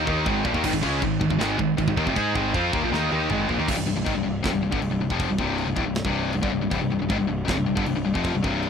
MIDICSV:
0, 0, Header, 1, 4, 480
1, 0, Start_track
1, 0, Tempo, 380711
1, 798, Time_signature, 4, 2, 24, 8
1, 10965, End_track
2, 0, Start_track
2, 0, Title_t, "Distorted electric guitar"
2, 0, Program_c, 0, 30
2, 62, Note_on_c, 0, 51, 87
2, 75, Note_on_c, 0, 58, 91
2, 77, Note_on_c, 0, 63, 100
2, 303, Note_off_c, 0, 51, 0
2, 309, Note_off_c, 0, 58, 0
2, 311, Note_off_c, 0, 63, 0
2, 313, Note_on_c, 0, 44, 96
2, 327, Note_on_c, 0, 51, 95
2, 328, Note_on_c, 0, 56, 112
2, 548, Note_off_c, 0, 44, 0
2, 553, Note_on_c, 0, 46, 90
2, 555, Note_off_c, 0, 51, 0
2, 556, Note_off_c, 0, 56, 0
2, 563, Note_on_c, 0, 53, 98
2, 668, Note_off_c, 0, 46, 0
2, 673, Note_off_c, 0, 53, 0
2, 681, Note_on_c, 0, 51, 91
2, 695, Note_on_c, 0, 58, 109
2, 792, Note_off_c, 0, 51, 0
2, 799, Note_off_c, 0, 58, 0
2, 799, Note_on_c, 0, 44, 89
2, 809, Note_on_c, 0, 51, 101
2, 911, Note_off_c, 0, 44, 0
2, 916, Note_off_c, 0, 51, 0
2, 926, Note_on_c, 0, 44, 48
2, 930, Note_on_c, 0, 51, 69
2, 1033, Note_off_c, 0, 51, 0
2, 1038, Note_on_c, 0, 49, 93
2, 1042, Note_off_c, 0, 44, 0
2, 1046, Note_on_c, 0, 56, 86
2, 1059, Note_on_c, 0, 61, 93
2, 1271, Note_off_c, 0, 49, 0
2, 1275, Note_off_c, 0, 56, 0
2, 1281, Note_off_c, 0, 61, 0
2, 1296, Note_on_c, 0, 51, 64
2, 1300, Note_on_c, 0, 44, 59
2, 1479, Note_off_c, 0, 51, 0
2, 1481, Note_off_c, 0, 44, 0
2, 1507, Note_on_c, 0, 44, 63
2, 1514, Note_on_c, 0, 51, 71
2, 1632, Note_off_c, 0, 44, 0
2, 1636, Note_off_c, 0, 51, 0
2, 1651, Note_on_c, 0, 44, 60
2, 1659, Note_on_c, 0, 51, 70
2, 1735, Note_off_c, 0, 44, 0
2, 1737, Note_off_c, 0, 51, 0
2, 1750, Note_on_c, 0, 44, 91
2, 1752, Note_on_c, 0, 51, 99
2, 1753, Note_on_c, 0, 56, 93
2, 1975, Note_off_c, 0, 44, 0
2, 1979, Note_off_c, 0, 51, 0
2, 1988, Note_off_c, 0, 56, 0
2, 1991, Note_on_c, 0, 44, 63
2, 1994, Note_on_c, 0, 51, 73
2, 2185, Note_off_c, 0, 44, 0
2, 2187, Note_off_c, 0, 51, 0
2, 2234, Note_on_c, 0, 44, 70
2, 2245, Note_on_c, 0, 51, 76
2, 2350, Note_off_c, 0, 44, 0
2, 2350, Note_off_c, 0, 51, 0
2, 2365, Note_on_c, 0, 44, 54
2, 2365, Note_on_c, 0, 51, 71
2, 2472, Note_off_c, 0, 51, 0
2, 2481, Note_off_c, 0, 44, 0
2, 2487, Note_on_c, 0, 51, 86
2, 2492, Note_on_c, 0, 58, 108
2, 2594, Note_off_c, 0, 51, 0
2, 2597, Note_off_c, 0, 58, 0
2, 2598, Note_on_c, 0, 41, 94
2, 2608, Note_on_c, 0, 48, 119
2, 2710, Note_off_c, 0, 41, 0
2, 2715, Note_off_c, 0, 48, 0
2, 2719, Note_on_c, 0, 56, 108
2, 2730, Note_on_c, 0, 63, 96
2, 2734, Note_on_c, 0, 68, 110
2, 2950, Note_off_c, 0, 56, 0
2, 2956, Note_off_c, 0, 63, 0
2, 2958, Note_off_c, 0, 68, 0
2, 2961, Note_on_c, 0, 44, 86
2, 2968, Note_on_c, 0, 51, 88
2, 2975, Note_on_c, 0, 56, 93
2, 3191, Note_off_c, 0, 44, 0
2, 3194, Note_off_c, 0, 51, 0
2, 3194, Note_off_c, 0, 56, 0
2, 3199, Note_on_c, 0, 53, 89
2, 3202, Note_on_c, 0, 60, 89
2, 3213, Note_on_c, 0, 65, 94
2, 3430, Note_off_c, 0, 53, 0
2, 3430, Note_on_c, 0, 51, 82
2, 3432, Note_off_c, 0, 60, 0
2, 3437, Note_off_c, 0, 65, 0
2, 3444, Note_on_c, 0, 58, 103
2, 3545, Note_off_c, 0, 51, 0
2, 3553, Note_off_c, 0, 58, 0
2, 3553, Note_on_c, 0, 46, 82
2, 3563, Note_on_c, 0, 53, 90
2, 3667, Note_off_c, 0, 46, 0
2, 3672, Note_off_c, 0, 53, 0
2, 3682, Note_on_c, 0, 51, 79
2, 3693, Note_on_c, 0, 58, 95
2, 3696, Note_on_c, 0, 63, 89
2, 3911, Note_off_c, 0, 51, 0
2, 3917, Note_off_c, 0, 58, 0
2, 3918, Note_off_c, 0, 63, 0
2, 3925, Note_on_c, 0, 51, 93
2, 3931, Note_on_c, 0, 58, 104
2, 3937, Note_on_c, 0, 63, 91
2, 4146, Note_off_c, 0, 51, 0
2, 4156, Note_off_c, 0, 58, 0
2, 4159, Note_off_c, 0, 63, 0
2, 4161, Note_on_c, 0, 51, 100
2, 4162, Note_on_c, 0, 44, 88
2, 4171, Note_on_c, 0, 56, 115
2, 4390, Note_off_c, 0, 44, 0
2, 4390, Note_off_c, 0, 51, 0
2, 4395, Note_off_c, 0, 56, 0
2, 4395, Note_on_c, 0, 46, 84
2, 4402, Note_on_c, 0, 53, 89
2, 4507, Note_off_c, 0, 46, 0
2, 4511, Note_off_c, 0, 53, 0
2, 4518, Note_on_c, 0, 51, 95
2, 4531, Note_on_c, 0, 58, 108
2, 4629, Note_off_c, 0, 51, 0
2, 4635, Note_off_c, 0, 58, 0
2, 4636, Note_on_c, 0, 36, 100
2, 4643, Note_on_c, 0, 43, 101
2, 4729, Note_off_c, 0, 36, 0
2, 4744, Note_off_c, 0, 43, 0
2, 4744, Note_on_c, 0, 36, 59
2, 4759, Note_on_c, 0, 43, 68
2, 4853, Note_off_c, 0, 36, 0
2, 4867, Note_off_c, 0, 43, 0
2, 4868, Note_on_c, 0, 36, 56
2, 4883, Note_on_c, 0, 43, 65
2, 4975, Note_off_c, 0, 43, 0
2, 4980, Note_off_c, 0, 36, 0
2, 4990, Note_on_c, 0, 43, 76
2, 4995, Note_on_c, 0, 36, 71
2, 5093, Note_off_c, 0, 36, 0
2, 5095, Note_off_c, 0, 43, 0
2, 5098, Note_on_c, 0, 44, 94
2, 5100, Note_on_c, 0, 51, 101
2, 5219, Note_off_c, 0, 44, 0
2, 5220, Note_off_c, 0, 51, 0
2, 5226, Note_on_c, 0, 36, 60
2, 5230, Note_on_c, 0, 43, 78
2, 5320, Note_off_c, 0, 36, 0
2, 5331, Note_off_c, 0, 43, 0
2, 5336, Note_on_c, 0, 36, 52
2, 5347, Note_on_c, 0, 43, 60
2, 5537, Note_off_c, 0, 36, 0
2, 5542, Note_off_c, 0, 43, 0
2, 5580, Note_on_c, 0, 41, 90
2, 5582, Note_on_c, 0, 48, 105
2, 5700, Note_off_c, 0, 41, 0
2, 5701, Note_off_c, 0, 48, 0
2, 5711, Note_on_c, 0, 36, 67
2, 5724, Note_on_c, 0, 43, 81
2, 5818, Note_off_c, 0, 36, 0
2, 5819, Note_off_c, 0, 43, 0
2, 5833, Note_on_c, 0, 36, 66
2, 5834, Note_on_c, 0, 43, 69
2, 5930, Note_off_c, 0, 43, 0
2, 5940, Note_off_c, 0, 36, 0
2, 5945, Note_on_c, 0, 43, 89
2, 5954, Note_on_c, 0, 50, 89
2, 6062, Note_off_c, 0, 43, 0
2, 6067, Note_off_c, 0, 50, 0
2, 6080, Note_on_c, 0, 36, 60
2, 6085, Note_on_c, 0, 43, 71
2, 6176, Note_off_c, 0, 36, 0
2, 6191, Note_off_c, 0, 43, 0
2, 6192, Note_on_c, 0, 36, 57
2, 6206, Note_on_c, 0, 43, 67
2, 6300, Note_off_c, 0, 36, 0
2, 6304, Note_off_c, 0, 43, 0
2, 6315, Note_on_c, 0, 36, 63
2, 6319, Note_on_c, 0, 43, 65
2, 6435, Note_off_c, 0, 36, 0
2, 6436, Note_off_c, 0, 43, 0
2, 6441, Note_on_c, 0, 41, 107
2, 6446, Note_on_c, 0, 48, 102
2, 6452, Note_on_c, 0, 53, 111
2, 6670, Note_off_c, 0, 41, 0
2, 6673, Note_off_c, 0, 48, 0
2, 6676, Note_off_c, 0, 53, 0
2, 6679, Note_on_c, 0, 36, 53
2, 6680, Note_on_c, 0, 43, 64
2, 6784, Note_off_c, 0, 36, 0
2, 6790, Note_off_c, 0, 43, 0
2, 6799, Note_on_c, 0, 36, 87
2, 6803, Note_on_c, 0, 48, 91
2, 6805, Note_on_c, 0, 43, 87
2, 7132, Note_off_c, 0, 36, 0
2, 7141, Note_off_c, 0, 43, 0
2, 7147, Note_on_c, 0, 36, 61
2, 7151, Note_off_c, 0, 48, 0
2, 7156, Note_on_c, 0, 43, 68
2, 7255, Note_off_c, 0, 36, 0
2, 7260, Note_on_c, 0, 38, 82
2, 7266, Note_off_c, 0, 43, 0
2, 7271, Note_on_c, 0, 45, 107
2, 7373, Note_off_c, 0, 38, 0
2, 7378, Note_on_c, 0, 36, 64
2, 7384, Note_off_c, 0, 45, 0
2, 7389, Note_on_c, 0, 43, 74
2, 7578, Note_off_c, 0, 36, 0
2, 7584, Note_off_c, 0, 43, 0
2, 7640, Note_on_c, 0, 36, 84
2, 7645, Note_on_c, 0, 43, 106
2, 7649, Note_on_c, 0, 48, 102
2, 7990, Note_off_c, 0, 36, 0
2, 7992, Note_off_c, 0, 43, 0
2, 7995, Note_off_c, 0, 48, 0
2, 8005, Note_on_c, 0, 36, 60
2, 8006, Note_on_c, 0, 43, 70
2, 8082, Note_off_c, 0, 43, 0
2, 8093, Note_off_c, 0, 36, 0
2, 8098, Note_on_c, 0, 43, 92
2, 8099, Note_on_c, 0, 50, 101
2, 8219, Note_off_c, 0, 43, 0
2, 8220, Note_off_c, 0, 50, 0
2, 8228, Note_on_c, 0, 36, 60
2, 8234, Note_on_c, 0, 43, 74
2, 8324, Note_off_c, 0, 36, 0
2, 8332, Note_off_c, 0, 43, 0
2, 8339, Note_on_c, 0, 36, 71
2, 8347, Note_on_c, 0, 43, 85
2, 8449, Note_off_c, 0, 36, 0
2, 8464, Note_on_c, 0, 36, 106
2, 8466, Note_off_c, 0, 43, 0
2, 8481, Note_on_c, 0, 43, 119
2, 8582, Note_off_c, 0, 36, 0
2, 8585, Note_off_c, 0, 43, 0
2, 8596, Note_on_c, 0, 36, 56
2, 8600, Note_on_c, 0, 43, 54
2, 8706, Note_off_c, 0, 36, 0
2, 8706, Note_off_c, 0, 43, 0
2, 8721, Note_on_c, 0, 36, 66
2, 8721, Note_on_c, 0, 43, 71
2, 8832, Note_off_c, 0, 43, 0
2, 8835, Note_off_c, 0, 36, 0
2, 8847, Note_on_c, 0, 43, 73
2, 8851, Note_on_c, 0, 36, 74
2, 8951, Note_off_c, 0, 36, 0
2, 8956, Note_on_c, 0, 44, 93
2, 8958, Note_off_c, 0, 43, 0
2, 8963, Note_on_c, 0, 51, 98
2, 9053, Note_off_c, 0, 44, 0
2, 9058, Note_on_c, 0, 36, 72
2, 9059, Note_off_c, 0, 51, 0
2, 9064, Note_on_c, 0, 43, 79
2, 9155, Note_off_c, 0, 36, 0
2, 9160, Note_off_c, 0, 43, 0
2, 9170, Note_on_c, 0, 36, 67
2, 9175, Note_on_c, 0, 43, 71
2, 9375, Note_off_c, 0, 36, 0
2, 9377, Note_off_c, 0, 43, 0
2, 9390, Note_on_c, 0, 41, 96
2, 9409, Note_on_c, 0, 48, 103
2, 9526, Note_off_c, 0, 41, 0
2, 9535, Note_off_c, 0, 48, 0
2, 9536, Note_on_c, 0, 36, 66
2, 9540, Note_on_c, 0, 43, 71
2, 9645, Note_off_c, 0, 43, 0
2, 9646, Note_off_c, 0, 36, 0
2, 9660, Note_on_c, 0, 43, 76
2, 9661, Note_on_c, 0, 36, 59
2, 9762, Note_off_c, 0, 43, 0
2, 9772, Note_off_c, 0, 36, 0
2, 9777, Note_on_c, 0, 43, 100
2, 9788, Note_on_c, 0, 50, 102
2, 9899, Note_off_c, 0, 43, 0
2, 9905, Note_off_c, 0, 50, 0
2, 9914, Note_on_c, 0, 36, 74
2, 9923, Note_on_c, 0, 43, 70
2, 10015, Note_off_c, 0, 36, 0
2, 10025, Note_off_c, 0, 43, 0
2, 10030, Note_on_c, 0, 36, 59
2, 10040, Note_on_c, 0, 43, 65
2, 10131, Note_off_c, 0, 36, 0
2, 10144, Note_off_c, 0, 43, 0
2, 10146, Note_on_c, 0, 36, 58
2, 10159, Note_on_c, 0, 43, 77
2, 10253, Note_off_c, 0, 36, 0
2, 10258, Note_on_c, 0, 41, 92
2, 10266, Note_off_c, 0, 43, 0
2, 10271, Note_on_c, 0, 48, 97
2, 10278, Note_on_c, 0, 53, 109
2, 10498, Note_off_c, 0, 41, 0
2, 10503, Note_on_c, 0, 36, 64
2, 10507, Note_off_c, 0, 48, 0
2, 10510, Note_off_c, 0, 53, 0
2, 10512, Note_on_c, 0, 43, 68
2, 10607, Note_off_c, 0, 36, 0
2, 10618, Note_off_c, 0, 43, 0
2, 10622, Note_on_c, 0, 36, 91
2, 10633, Note_on_c, 0, 43, 92
2, 10637, Note_on_c, 0, 48, 85
2, 10965, Note_off_c, 0, 36, 0
2, 10965, Note_off_c, 0, 43, 0
2, 10965, Note_off_c, 0, 48, 0
2, 10965, End_track
3, 0, Start_track
3, 0, Title_t, "Picked electric bass"
3, 0, Program_c, 1, 34
3, 91, Note_on_c, 1, 39, 99
3, 308, Note_off_c, 1, 39, 0
3, 330, Note_on_c, 1, 32, 92
3, 548, Note_off_c, 1, 32, 0
3, 567, Note_on_c, 1, 34, 88
3, 674, Note_off_c, 1, 34, 0
3, 691, Note_on_c, 1, 39, 94
3, 797, Note_off_c, 1, 39, 0
3, 805, Note_on_c, 1, 32, 96
3, 913, Note_off_c, 1, 32, 0
3, 921, Note_on_c, 1, 32, 94
3, 1031, Note_off_c, 1, 32, 0
3, 1046, Note_on_c, 1, 37, 96
3, 1265, Note_off_c, 1, 37, 0
3, 1290, Note_on_c, 1, 32, 94
3, 1507, Note_off_c, 1, 32, 0
3, 1523, Note_on_c, 1, 32, 90
3, 1632, Note_off_c, 1, 32, 0
3, 1643, Note_on_c, 1, 32, 76
3, 1748, Note_off_c, 1, 32, 0
3, 1755, Note_on_c, 1, 32, 91
3, 1979, Note_off_c, 1, 32, 0
3, 2003, Note_on_c, 1, 32, 78
3, 2223, Note_off_c, 1, 32, 0
3, 2252, Note_on_c, 1, 32, 79
3, 2356, Note_off_c, 1, 32, 0
3, 2361, Note_on_c, 1, 32, 88
3, 2470, Note_off_c, 1, 32, 0
3, 2485, Note_on_c, 1, 39, 102
3, 2592, Note_off_c, 1, 39, 0
3, 2609, Note_on_c, 1, 29, 99
3, 2714, Note_off_c, 1, 29, 0
3, 2732, Note_on_c, 1, 44, 98
3, 2947, Note_off_c, 1, 44, 0
3, 2963, Note_on_c, 1, 32, 80
3, 3183, Note_off_c, 1, 32, 0
3, 3202, Note_on_c, 1, 41, 101
3, 3422, Note_off_c, 1, 41, 0
3, 3448, Note_on_c, 1, 39, 101
3, 3553, Note_off_c, 1, 39, 0
3, 3572, Note_on_c, 1, 34, 89
3, 3672, Note_off_c, 1, 34, 0
3, 3680, Note_on_c, 1, 39, 98
3, 3901, Note_off_c, 1, 39, 0
3, 3931, Note_on_c, 1, 39, 97
3, 4147, Note_off_c, 1, 39, 0
3, 4173, Note_on_c, 1, 32, 95
3, 4388, Note_off_c, 1, 32, 0
3, 4401, Note_on_c, 1, 34, 81
3, 4510, Note_off_c, 1, 34, 0
3, 4523, Note_on_c, 1, 39, 91
3, 4631, Note_off_c, 1, 39, 0
3, 4639, Note_on_c, 1, 24, 89
3, 4749, Note_off_c, 1, 24, 0
3, 4766, Note_on_c, 1, 24, 81
3, 4872, Note_off_c, 1, 24, 0
3, 4896, Note_on_c, 1, 24, 68
3, 4997, Note_off_c, 1, 24, 0
3, 5013, Note_on_c, 1, 24, 71
3, 5116, Note_off_c, 1, 24, 0
3, 5125, Note_on_c, 1, 32, 99
3, 5231, Note_off_c, 1, 32, 0
3, 5250, Note_on_c, 1, 24, 83
3, 5354, Note_off_c, 1, 24, 0
3, 5368, Note_on_c, 1, 24, 81
3, 5585, Note_off_c, 1, 24, 0
3, 5598, Note_on_c, 1, 29, 93
3, 5708, Note_off_c, 1, 29, 0
3, 5713, Note_on_c, 1, 24, 78
3, 5825, Note_off_c, 1, 24, 0
3, 5853, Note_on_c, 1, 24, 77
3, 5949, Note_off_c, 1, 24, 0
3, 5957, Note_on_c, 1, 31, 93
3, 6067, Note_off_c, 1, 31, 0
3, 6078, Note_on_c, 1, 24, 81
3, 6188, Note_off_c, 1, 24, 0
3, 6193, Note_on_c, 1, 24, 77
3, 6305, Note_off_c, 1, 24, 0
3, 6319, Note_on_c, 1, 24, 74
3, 6424, Note_off_c, 1, 24, 0
3, 6431, Note_on_c, 1, 29, 95
3, 6656, Note_off_c, 1, 29, 0
3, 6680, Note_on_c, 1, 24, 84
3, 6783, Note_off_c, 1, 24, 0
3, 6790, Note_on_c, 1, 24, 88
3, 7127, Note_off_c, 1, 24, 0
3, 7154, Note_on_c, 1, 24, 79
3, 7262, Note_off_c, 1, 24, 0
3, 7269, Note_on_c, 1, 26, 107
3, 7376, Note_off_c, 1, 26, 0
3, 7383, Note_on_c, 1, 24, 73
3, 7612, Note_off_c, 1, 24, 0
3, 7623, Note_on_c, 1, 24, 91
3, 7963, Note_off_c, 1, 24, 0
3, 7994, Note_on_c, 1, 24, 83
3, 8099, Note_off_c, 1, 24, 0
3, 8106, Note_on_c, 1, 31, 89
3, 8217, Note_off_c, 1, 31, 0
3, 8224, Note_on_c, 1, 24, 83
3, 8340, Note_off_c, 1, 24, 0
3, 8351, Note_on_c, 1, 24, 86
3, 8459, Note_off_c, 1, 24, 0
3, 8467, Note_on_c, 1, 24, 95
3, 8582, Note_off_c, 1, 24, 0
3, 8593, Note_on_c, 1, 24, 87
3, 8705, Note_off_c, 1, 24, 0
3, 8723, Note_on_c, 1, 24, 68
3, 8831, Note_off_c, 1, 24, 0
3, 8850, Note_on_c, 1, 24, 69
3, 8938, Note_off_c, 1, 24, 0
3, 8946, Note_on_c, 1, 32, 110
3, 9062, Note_off_c, 1, 32, 0
3, 9089, Note_on_c, 1, 24, 82
3, 9194, Note_off_c, 1, 24, 0
3, 9210, Note_on_c, 1, 24, 87
3, 9427, Note_off_c, 1, 24, 0
3, 9438, Note_on_c, 1, 29, 99
3, 9548, Note_off_c, 1, 29, 0
3, 9579, Note_on_c, 1, 24, 78
3, 9680, Note_off_c, 1, 24, 0
3, 9695, Note_on_c, 1, 24, 75
3, 9782, Note_off_c, 1, 24, 0
3, 9790, Note_on_c, 1, 31, 86
3, 9904, Note_off_c, 1, 31, 0
3, 9937, Note_on_c, 1, 24, 76
3, 10039, Note_off_c, 1, 24, 0
3, 10052, Note_on_c, 1, 24, 83
3, 10156, Note_off_c, 1, 24, 0
3, 10167, Note_on_c, 1, 24, 78
3, 10268, Note_off_c, 1, 24, 0
3, 10276, Note_on_c, 1, 29, 96
3, 10499, Note_off_c, 1, 29, 0
3, 10520, Note_on_c, 1, 24, 83
3, 10630, Note_off_c, 1, 24, 0
3, 10647, Note_on_c, 1, 24, 89
3, 10965, Note_off_c, 1, 24, 0
3, 10965, End_track
4, 0, Start_track
4, 0, Title_t, "Drums"
4, 91, Note_on_c, 9, 36, 106
4, 217, Note_off_c, 9, 36, 0
4, 330, Note_on_c, 9, 36, 122
4, 330, Note_on_c, 9, 52, 59
4, 456, Note_off_c, 9, 36, 0
4, 456, Note_off_c, 9, 52, 0
4, 565, Note_on_c, 9, 36, 99
4, 685, Note_off_c, 9, 36, 0
4, 685, Note_on_c, 9, 36, 83
4, 804, Note_on_c, 9, 49, 111
4, 804, Note_on_c, 9, 52, 64
4, 806, Note_off_c, 9, 36, 0
4, 806, Note_on_c, 9, 36, 104
4, 925, Note_off_c, 9, 36, 0
4, 925, Note_on_c, 9, 36, 80
4, 930, Note_off_c, 9, 49, 0
4, 930, Note_off_c, 9, 52, 0
4, 1045, Note_off_c, 9, 36, 0
4, 1045, Note_on_c, 9, 36, 94
4, 1171, Note_off_c, 9, 36, 0
4, 1287, Note_on_c, 9, 36, 93
4, 1291, Note_on_c, 9, 52, 56
4, 1413, Note_off_c, 9, 36, 0
4, 1417, Note_off_c, 9, 52, 0
4, 1526, Note_on_c, 9, 36, 97
4, 1644, Note_off_c, 9, 36, 0
4, 1644, Note_on_c, 9, 36, 91
4, 1767, Note_on_c, 9, 52, 62
4, 1770, Note_off_c, 9, 36, 0
4, 1781, Note_on_c, 9, 38, 102
4, 1893, Note_off_c, 9, 52, 0
4, 1907, Note_off_c, 9, 38, 0
4, 2007, Note_on_c, 9, 36, 88
4, 2133, Note_off_c, 9, 36, 0
4, 2249, Note_on_c, 9, 36, 98
4, 2254, Note_on_c, 9, 52, 72
4, 2366, Note_off_c, 9, 36, 0
4, 2366, Note_on_c, 9, 36, 89
4, 2380, Note_off_c, 9, 52, 0
4, 2489, Note_off_c, 9, 36, 0
4, 2489, Note_on_c, 9, 36, 74
4, 2608, Note_off_c, 9, 36, 0
4, 2608, Note_on_c, 9, 36, 92
4, 2728, Note_off_c, 9, 36, 0
4, 2728, Note_on_c, 9, 36, 104
4, 2734, Note_on_c, 9, 52, 68
4, 2854, Note_off_c, 9, 36, 0
4, 2860, Note_off_c, 9, 52, 0
4, 2969, Note_on_c, 9, 36, 106
4, 3095, Note_off_c, 9, 36, 0
4, 3208, Note_on_c, 9, 36, 99
4, 3219, Note_on_c, 9, 52, 62
4, 3334, Note_off_c, 9, 36, 0
4, 3345, Note_off_c, 9, 52, 0
4, 3446, Note_on_c, 9, 36, 113
4, 3572, Note_off_c, 9, 36, 0
4, 3708, Note_on_c, 9, 38, 65
4, 3834, Note_off_c, 9, 38, 0
4, 3937, Note_on_c, 9, 48, 70
4, 4063, Note_off_c, 9, 48, 0
4, 4158, Note_on_c, 9, 45, 104
4, 4284, Note_off_c, 9, 45, 0
4, 4401, Note_on_c, 9, 43, 84
4, 4527, Note_off_c, 9, 43, 0
4, 4644, Note_on_c, 9, 36, 104
4, 4646, Note_on_c, 9, 49, 127
4, 4646, Note_on_c, 9, 57, 68
4, 4770, Note_off_c, 9, 36, 0
4, 4773, Note_off_c, 9, 49, 0
4, 4773, Note_off_c, 9, 57, 0
4, 5124, Note_on_c, 9, 36, 97
4, 5137, Note_on_c, 9, 57, 60
4, 5250, Note_off_c, 9, 36, 0
4, 5263, Note_off_c, 9, 57, 0
4, 5599, Note_on_c, 9, 36, 97
4, 5603, Note_on_c, 9, 57, 64
4, 5617, Note_on_c, 9, 38, 106
4, 5726, Note_off_c, 9, 36, 0
4, 5730, Note_off_c, 9, 57, 0
4, 5743, Note_off_c, 9, 38, 0
4, 5956, Note_on_c, 9, 36, 105
4, 6075, Note_on_c, 9, 57, 65
4, 6082, Note_off_c, 9, 36, 0
4, 6201, Note_off_c, 9, 57, 0
4, 6433, Note_on_c, 9, 36, 97
4, 6553, Note_off_c, 9, 36, 0
4, 6553, Note_on_c, 9, 36, 111
4, 6554, Note_on_c, 9, 57, 61
4, 6679, Note_off_c, 9, 36, 0
4, 6680, Note_off_c, 9, 57, 0
4, 6789, Note_on_c, 9, 36, 104
4, 6915, Note_off_c, 9, 36, 0
4, 7036, Note_on_c, 9, 57, 62
4, 7162, Note_off_c, 9, 57, 0
4, 7269, Note_on_c, 9, 36, 111
4, 7395, Note_off_c, 9, 36, 0
4, 7500, Note_on_c, 9, 57, 54
4, 7514, Note_on_c, 9, 38, 108
4, 7624, Note_on_c, 9, 36, 115
4, 7627, Note_off_c, 9, 57, 0
4, 7640, Note_off_c, 9, 38, 0
4, 7750, Note_off_c, 9, 36, 0
4, 7977, Note_on_c, 9, 57, 60
4, 8103, Note_off_c, 9, 57, 0
4, 8106, Note_on_c, 9, 36, 113
4, 8232, Note_off_c, 9, 36, 0
4, 8465, Note_on_c, 9, 36, 109
4, 8473, Note_on_c, 9, 57, 62
4, 8591, Note_off_c, 9, 36, 0
4, 8599, Note_off_c, 9, 57, 0
4, 8950, Note_on_c, 9, 36, 104
4, 8953, Note_on_c, 9, 57, 60
4, 9076, Note_off_c, 9, 36, 0
4, 9079, Note_off_c, 9, 57, 0
4, 9432, Note_on_c, 9, 57, 63
4, 9433, Note_on_c, 9, 36, 92
4, 9446, Note_on_c, 9, 38, 102
4, 9558, Note_off_c, 9, 57, 0
4, 9559, Note_off_c, 9, 36, 0
4, 9572, Note_off_c, 9, 38, 0
4, 9796, Note_on_c, 9, 36, 109
4, 9913, Note_on_c, 9, 57, 75
4, 9922, Note_off_c, 9, 36, 0
4, 10039, Note_off_c, 9, 57, 0
4, 10278, Note_on_c, 9, 36, 107
4, 10388, Note_on_c, 9, 57, 69
4, 10399, Note_off_c, 9, 36, 0
4, 10399, Note_on_c, 9, 36, 99
4, 10514, Note_off_c, 9, 57, 0
4, 10525, Note_off_c, 9, 36, 0
4, 10643, Note_on_c, 9, 36, 104
4, 10769, Note_off_c, 9, 36, 0
4, 10876, Note_on_c, 9, 57, 55
4, 10965, Note_off_c, 9, 57, 0
4, 10965, End_track
0, 0, End_of_file